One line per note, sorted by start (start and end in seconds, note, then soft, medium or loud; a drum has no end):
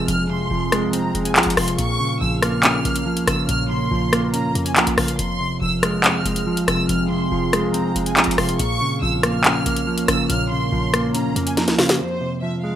0.00 0.29 C3 medium
0.00 0.50 F3 medium
0.00 1.75 F3 medium
0.00 0.51 G#3 medium
0.00 0.29 C4 medium
0.00 1.75 C4 medium
0.00 1.75 G#4 medium
0.00 5.15 F5 medium
0.08 0.49 F1 loud
0.08 1.15 F2 medium
0.08 0.26 F6 medium
0.08 closed hi-hat medium
0.30 1.36 C3 medium
0.30 0.90 C6 medium
0.51 0.84 F1 loud
0.51 1.35 F3 medium
0.72 1.14 G#3 loud
0.72 cross-stick loud
0.72 closed hi-hat medium
0.83 1.00 C2 loud
0.93 1.78 C4 medium
0.93 1.23 A#5 medium
0.93 closed hi-hat medium
0.99 1.14 F1 loud
1.15 1.37 F1 loud
1.15 1.79 G#3 medium
1.15 closed hi-hat medium
1.25 1.34 G#5 medium
1.25 closed hi-hat medium
1.36 1.46 C2 loud
1.36 1.79 F3 medium
1.36 1.53 A#5 medium
1.36 clap loud
1.36 closed hi-hat medium
1.43 1.57 F1 loud
1.43 closed hi-hat medium
1.50 closed hi-hat medium
1.57 1.78 F1 loud
1.57 1.79 C3 medium
1.57 1.75 C6 medium
1.57 cross-stick loud
1.57 open hi-hat medium
1.68 closed hi-hat medium
1.78 1.99 A#1 loud
1.78 2.85 A#2 medium
1.78 5.16 A#3 medium
1.78 5.16 A#4 medium
1.78 5.16 C#5 medium
1.78 2.19 C#6 loud
1.78 closed hi-hat medium
2.00 3.06 C#3 medium
2.21 2.82 A#1 loud
2.21 3.05 F3 medium
2.21 2.39 E6 medium
2.42 2.83 A#3 loud
2.42 3.24 F6 medium
2.42 cross-stick loud
2.42 closed hi-hat medium
2.63 3.70 C#4 medium
2.63 clap loud
2.63 closed hi-hat medium
2.85 3.18 A#1 loud
2.85 3.91 A#3 medium
2.85 closed hi-hat medium
2.96 closed hi-hat medium
3.06 3.90 F3 medium
3.17 3.27 C#2 loud
3.17 closed hi-hat medium
3.27 3.48 G#1 loud
3.27 3.69 C#3 medium
3.27 3.45 E6 medium
3.27 cross-stick loud
3.27 closed hi-hat medium
3.49 3.90 A#1 loud
3.49 4.55 A#2 medium
3.49 3.66 F6 loud
3.49 closed hi-hat medium
3.70 4.77 C#3 medium
3.70 4.30 C6 medium
3.91 4.35 A#1 loud
3.91 4.75 F3 medium
4.13 4.54 A#3 loud
4.13 cross-stick loud
4.13 closed hi-hat medium
4.34 4.46 A#2 loud
4.34 5.19 C#4 medium
4.34 4.64 A#5 medium
4.34 closed hi-hat medium
4.45 4.55 A#1 loud
4.55 4.78 F2 loud
4.55 5.19 A#3 medium
4.55 closed hi-hat medium
4.66 4.74 G#5 medium
4.66 closed hi-hat medium
4.76 4.87 C#2 loud
4.76 5.19 F3 medium
4.76 4.94 A#5 medium
4.76 clap loud
4.76 closed hi-hat medium
4.87 4.97 A#1 loud
4.87 closed hi-hat medium
4.98 5.18 A#1 loud
4.98 5.19 C#3 medium
4.98 5.15 F5 medium
4.98 cross-stick loud
4.98 open hi-hat medium
5.08 closed hi-hat medium
5.19 5.60 F1 loud
5.19 6.25 F2 medium
5.19 8.56 F3 medium
5.19 8.56 C4 medium
5.19 8.56 G#4 medium
5.19 11.96 F5 loud
5.19 5.59 C6 loud
5.19 closed hi-hat medium
5.40 6.46 C3 medium
5.62 6.06 F1 loud
5.62 6.45 F3 medium
5.62 5.79 E6 loud
5.83 6.24 G#3 loud
5.83 6.64 F6 medium
5.83 cross-stick loud
5.83 closed hi-hat medium
6.04 6.16 F2 loud
6.04 7.10 C4 medium
6.04 clap loud
6.04 closed hi-hat medium
6.15 6.25 F1 loud
6.25 6.66 F1 loud
6.25 7.32 G#3 medium
6.25 closed hi-hat medium
6.36 closed hi-hat medium
6.46 7.31 F3 medium
6.57 closed hi-hat medium
6.68 6.88 F1 loud
6.68 7.09 C3 medium
6.68 6.85 E6 medium
6.68 cross-stick loud
6.68 closed hi-hat medium
6.89 7.30 F1 loud
6.89 7.96 F2 medium
6.89 7.06 F6 medium
6.89 closed hi-hat medium
7.11 8.17 C3 medium
7.11 7.71 C6 medium
7.32 7.65 F1 loud
7.32 8.16 F3 medium
7.53 7.94 G#3 loud
7.53 cross-stick loud
7.53 closed hi-hat medium
7.64 7.81 C2 loud
7.74 8.59 C4 medium
7.74 8.04 A#5 medium
7.74 closed hi-hat medium
7.80 7.95 F1 loud
7.96 8.18 F1 loud
7.96 8.59 G#3 medium
7.96 closed hi-hat medium
8.06 8.15 G#5 medium
8.06 closed hi-hat medium
8.17 8.27 C2 loud
8.17 8.59 F3 medium
8.17 8.34 A#5 medium
8.17 clap loud
8.17 closed hi-hat medium
8.24 8.38 F1 loud
8.24 closed hi-hat medium
8.31 closed hi-hat medium
8.38 8.59 F1 loud
8.38 8.60 C3 medium
8.38 8.55 C6 medium
8.38 cross-stick loud
8.38 open hi-hat medium
8.49 closed hi-hat medium
8.59 8.80 A#1 loud
8.59 9.66 A#2 medium
8.59 11.96 A#3 medium
8.59 11.96 A#4 medium
8.59 11.96 C#5 medium
8.59 9.00 C#6 loud
8.59 closed hi-hat medium
8.81 9.87 C#3 medium
9.02 9.63 A#1 loud
9.02 9.86 F3 medium
9.02 9.19 E6 medium
9.23 9.65 A#3 loud
9.23 10.04 F6 medium
9.23 cross-stick loud
9.23 closed hi-hat medium
9.44 10.51 C#4 medium
9.44 clap loud
9.44 closed hi-hat medium
9.66 9.99 A#1 loud
9.66 10.72 A#3 medium
9.66 closed hi-hat medium
9.76 closed hi-hat medium
9.87 10.71 F3 medium
9.98 10.08 C#2 loud
9.98 closed hi-hat medium
10.08 10.29 G#1 loud
10.08 10.50 C#3 medium
10.08 10.26 E6 medium
10.08 cross-stick loud
10.08 closed hi-hat medium
10.30 10.70 A#1 loud
10.30 11.36 A#2 medium
10.30 10.47 F6 loud
10.30 closed hi-hat medium
10.51 11.58 C#3 medium
10.51 11.11 C6 medium
10.72 11.16 A#1 loud
10.72 11.56 F3 medium
10.94 11.35 A#3 loud
10.94 cross-stick loud
10.94 closed hi-hat medium
11.15 11.27 A#2 loud
11.15 12.00 C#4 medium
11.15 11.45 A#5 medium
11.15 closed hi-hat medium
11.25 11.36 A#1 loud
11.36 11.69 F2 loud
11.36 12.00 A#3 medium
11.36 closed hi-hat medium
11.47 11.55 G#5 medium
11.47 closed hi-hat medium
11.57 12.00 F3 medium
11.57 11.75 A#5 medium
11.57 snare medium
11.57 closed hi-hat medium
11.68 11.85 C#2 loud
11.68 snare medium
11.68 closed hi-hat medium
11.79 12.00 C#3 medium
11.79 11.96 F5 medium
11.79 snare loud
11.79 open hi-hat medium
11.84 11.99 F2 loud
11.89 snare loud
11.89 closed hi-hat medium
12.00 12.76 F2 medium
12.00 12.76 F3 medium
12.00 12.76 G#4 medium
12.00 12.76 C5 medium
12.00 12.40 C5 loud
12.21 12.76 C3 medium
12.42 12.76 F3 medium
12.42 12.60 E5 medium
12.64 12.76 G#3 medium
12.64 12.76 F5 medium